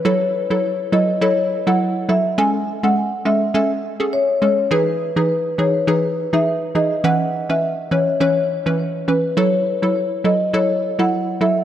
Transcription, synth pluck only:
X:1
M:4/4
L:1/16
Q:"Swing 16ths" 1/4=103
K:F#dor
V:1 name="Synth pluck"
[F,EA] z2 [F,EA] z2 [F,EA] z [F,EA] z2 [F,EA]3 [F,EA]2 | [G,CA] z2 [G,CA] z2 [G,CA] z [G,CA] z2 [CGA]3 [G,CA]2 | [E,DG] z2 [E,DG] z2 [E,DG] z [E,DG] z2 [E,DG]3 [E,DG]2 | [E,CB] z2 [E,CB] z2 [E,CB] z [E,CB] z2 [E,CB]3 [E,CB]2 |
[F,EA] z2 [F,EA] z2 [F,EA] z [F,EA] z2 [F,EA]3 [F,EA]2 |]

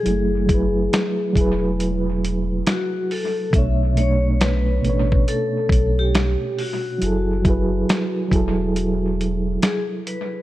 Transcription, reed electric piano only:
X:1
M:4/4
L:1/16
Q:"Swing 16ths" 1/4=69
K:F#phr
V:1 name="Reed electric piano"
[F,A,E^G]2 [F,EGB]3 z [F,EGB]6 z4 | [B,,A,Dc]2 [B,,A,Dc]3 z [B,,A,CDc]6 z4 | [F,E^GA]2 [F,EGB]3 z [F,EGA]6 z4 |]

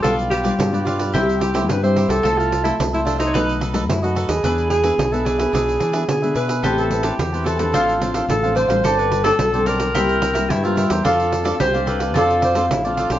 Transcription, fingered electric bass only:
X:1
M:4/4
L:1/16
Q:1/4=109
K:C
V:1 name="Fingered electric bass" clef=bass
B,,,4 G,,4 C,,4 G,,3 C,, | C,,4 C,,4 B,,,4 ^F,,3 ^D,, | E,,4 B,,,4 B,,,2 E,2 D,2 B,,2 | A,,,4 E,,4 A,,,4 A,,,3 A,,, |
G,,,4 B,,,4 C,,4 G,,3 E,, | F,,4 C,,4 F,,4 A,,,3 B,,, |]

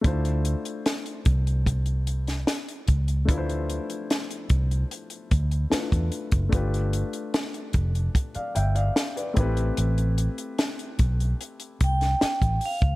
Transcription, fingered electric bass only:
X:1
M:4/4
L:1/16
Q:1/4=74
K:Ddor
V:1 name="Fingered electric bass" clef=bass
D,,3 z3 C,,6 z2 ^C,,2 | D,,3 z3 C,,2 z2 D,,2 z E,, z ^F,,, | G,,,3 z3 F,,,2 z2 G,,,2 z2 A,,,2 | A,,,3 z3 B,,,2 z2 C,,2 z A,,, z ^C,, |]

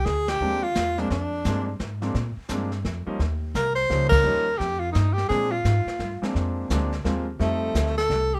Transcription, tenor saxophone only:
X:1
M:3/4
L:1/8
Q:"Swing" 1/4=172
K:Bbmix
V:1 name="Tenor saxophone"
A G2 F2 D | D4 z2 | z6 | z2 B c2 B- |
B2 G F E G | A F4 z | z6 | =A,3 =A2 G |]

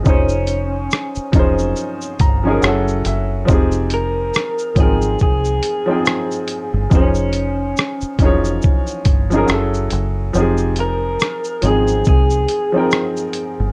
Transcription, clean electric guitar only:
X:1
M:4/4
L:1/8
Q:"Swing 16ths" 1/4=70
K:Fm
V:1 name="Clean electric guitar"
D6- D z | z B2 A A4 | D6- D z | z B2 A A4 |]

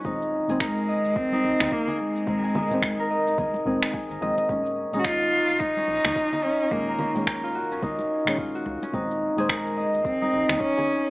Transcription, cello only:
X:1
M:4/4
L:1/16
Q:"Swing 16ths" 1/4=108
K:Abmix
V:1 name="Cello"
z4 A,4 C4 B,2 A,2- | A,8- A,2 z6 | z3 z/2 G/2 F4 E6 D2 | B,4 z12 |
z4 A,4 C4 D4 |]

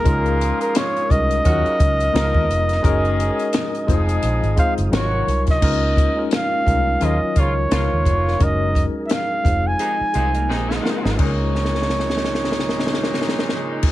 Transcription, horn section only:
X:1
M:4/4
L:1/16
Q:"Swing 16ths" 1/4=86
K:Db
V:1 name="Horn section" clef=bass
[B,,F,A,F]6 z2 [D,G,B,G]2 z2 [F,B,EB]2 z2 | [E,A,DA]4 z2 [F,A,EA]4 z2 [C,E,G,G]2 z2 | z8 [D,F,B,F] z [D,F,B,F] z [_C,F,B,F]4 | z8 [C,E,A,E] z [C,E,A,E] z [C,E,A,E]4 |
[B,,E,A,E]16 |]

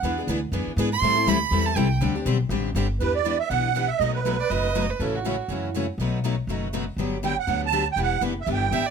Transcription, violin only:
X:1
M:4/4
L:1/8
Q:"Swing" 1/4=242
K:Dmix
V:1 name="Violin"
z6 z c'- | c'2 b3 a g2 | z8 | [K:Em] z8 |
z3 d ^d3 B | A F4 z3 | z8 | z8 |
z6 e d |]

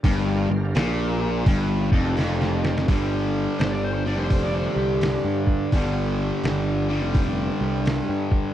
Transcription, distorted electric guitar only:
X:1
M:4/4
L:1/8
Q:"Swing" 1/4=84
K:Gm
V:1 name="Distorted electric guitar" clef=bass
G,, G,, B,,2 G,, F,, F,,2 | [G,,D,G,]3 [G,,D,G,]4- [G,,D,G,] | [G,,D,G,]3 [G,,D,G,]4- [G,,D,G,] |]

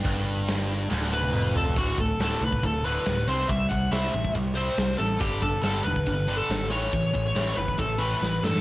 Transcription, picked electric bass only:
X:1
M:4/4
L:1/8
Q:1/4=139
K:Clyd
V:1 name="Picked electric bass" clef=bass
G,,,4 D,,,2 =F,,,2 | D,,, D,,, D,,, C,, D,,,2 D,,, C,, | C,, C,, C,, A,,, C,,2 C,, A,,, | G,,, G,,, G,,, E,,, G,,,2 ^G,,, A,,, |
A,,, A,,, A,,, G,,, A,,,2 A,,, G,, |]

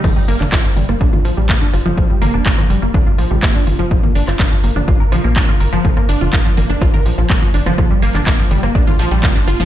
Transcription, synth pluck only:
X:1
M:4/4
L:1/16
Q:1/4=124
K:Gm
V:1 name="Synth pluck"
F, G, B, D F F, G, B, D F F, G, B, D F F, | F, G, B, D F F, G, B, D F F, G, B, D F F, | F, B, D F B F, B, D F B F, B, D F B F, | F, B, D F B F, B, D F B F, F, B, F, D F, |
F, G, B, D B, F, G, B, D F F, G, B, D F F, |]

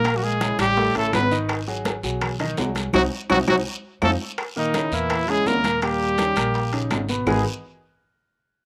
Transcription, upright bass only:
X:1
M:4/4
L:1/8
Q:1/4=166
K:G#m
V:1 name="Upright bass" clef=bass
A,,,3 =A,,,2 A,,, G,,,2- | G,,,3 B,,,3 ^B,,,2 | =C,, z C,, C,, z2 =F,, z | z3 E,,3 D,,2- |
D,,3 A,,,3 G,,,2 | G,,, z6 z |]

